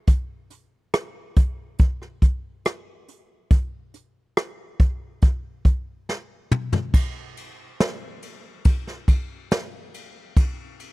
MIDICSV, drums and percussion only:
0, 0, Header, 1, 2, 480
1, 0, Start_track
1, 0, Tempo, 857143
1, 44, Time_signature, 4, 2, 24, 8
1, 6119, End_track
2, 0, Start_track
2, 0, Title_t, "Drums"
2, 41, Note_on_c, 9, 42, 80
2, 43, Note_on_c, 9, 36, 87
2, 97, Note_off_c, 9, 42, 0
2, 99, Note_off_c, 9, 36, 0
2, 282, Note_on_c, 9, 42, 64
2, 338, Note_off_c, 9, 42, 0
2, 525, Note_on_c, 9, 37, 103
2, 525, Note_on_c, 9, 42, 72
2, 581, Note_off_c, 9, 37, 0
2, 581, Note_off_c, 9, 42, 0
2, 764, Note_on_c, 9, 42, 67
2, 765, Note_on_c, 9, 36, 84
2, 820, Note_off_c, 9, 42, 0
2, 821, Note_off_c, 9, 36, 0
2, 1000, Note_on_c, 9, 42, 81
2, 1005, Note_on_c, 9, 36, 92
2, 1056, Note_off_c, 9, 42, 0
2, 1061, Note_off_c, 9, 36, 0
2, 1129, Note_on_c, 9, 37, 34
2, 1185, Note_off_c, 9, 37, 0
2, 1243, Note_on_c, 9, 36, 77
2, 1245, Note_on_c, 9, 42, 62
2, 1299, Note_off_c, 9, 36, 0
2, 1301, Note_off_c, 9, 42, 0
2, 1485, Note_on_c, 9, 42, 69
2, 1489, Note_on_c, 9, 37, 100
2, 1541, Note_off_c, 9, 42, 0
2, 1545, Note_off_c, 9, 37, 0
2, 1727, Note_on_c, 9, 42, 66
2, 1783, Note_off_c, 9, 42, 0
2, 1964, Note_on_c, 9, 36, 90
2, 1964, Note_on_c, 9, 42, 88
2, 2020, Note_off_c, 9, 36, 0
2, 2020, Note_off_c, 9, 42, 0
2, 2207, Note_on_c, 9, 42, 70
2, 2263, Note_off_c, 9, 42, 0
2, 2447, Note_on_c, 9, 42, 74
2, 2448, Note_on_c, 9, 37, 112
2, 2503, Note_off_c, 9, 42, 0
2, 2504, Note_off_c, 9, 37, 0
2, 2686, Note_on_c, 9, 36, 90
2, 2687, Note_on_c, 9, 42, 69
2, 2742, Note_off_c, 9, 36, 0
2, 2743, Note_off_c, 9, 42, 0
2, 2922, Note_on_c, 9, 42, 82
2, 2926, Note_on_c, 9, 36, 91
2, 2978, Note_off_c, 9, 42, 0
2, 2982, Note_off_c, 9, 36, 0
2, 3164, Note_on_c, 9, 36, 80
2, 3164, Note_on_c, 9, 42, 67
2, 3220, Note_off_c, 9, 36, 0
2, 3220, Note_off_c, 9, 42, 0
2, 3411, Note_on_c, 9, 38, 52
2, 3467, Note_off_c, 9, 38, 0
2, 3649, Note_on_c, 9, 45, 82
2, 3705, Note_off_c, 9, 45, 0
2, 3766, Note_on_c, 9, 43, 88
2, 3822, Note_off_c, 9, 43, 0
2, 3885, Note_on_c, 9, 36, 100
2, 3886, Note_on_c, 9, 49, 102
2, 3941, Note_off_c, 9, 36, 0
2, 3942, Note_off_c, 9, 49, 0
2, 4127, Note_on_c, 9, 51, 63
2, 4183, Note_off_c, 9, 51, 0
2, 4370, Note_on_c, 9, 38, 121
2, 4370, Note_on_c, 9, 51, 70
2, 4426, Note_off_c, 9, 38, 0
2, 4426, Note_off_c, 9, 51, 0
2, 4606, Note_on_c, 9, 51, 67
2, 4662, Note_off_c, 9, 51, 0
2, 4842, Note_on_c, 9, 51, 70
2, 4846, Note_on_c, 9, 36, 99
2, 4898, Note_off_c, 9, 51, 0
2, 4902, Note_off_c, 9, 36, 0
2, 4969, Note_on_c, 9, 38, 36
2, 5025, Note_off_c, 9, 38, 0
2, 5084, Note_on_c, 9, 36, 88
2, 5086, Note_on_c, 9, 51, 59
2, 5140, Note_off_c, 9, 36, 0
2, 5142, Note_off_c, 9, 51, 0
2, 5326, Note_on_c, 9, 51, 68
2, 5330, Note_on_c, 9, 38, 117
2, 5382, Note_off_c, 9, 51, 0
2, 5386, Note_off_c, 9, 38, 0
2, 5567, Note_on_c, 9, 51, 63
2, 5623, Note_off_c, 9, 51, 0
2, 5805, Note_on_c, 9, 36, 101
2, 5806, Note_on_c, 9, 51, 78
2, 5861, Note_off_c, 9, 36, 0
2, 5862, Note_off_c, 9, 51, 0
2, 6046, Note_on_c, 9, 51, 61
2, 6102, Note_off_c, 9, 51, 0
2, 6119, End_track
0, 0, End_of_file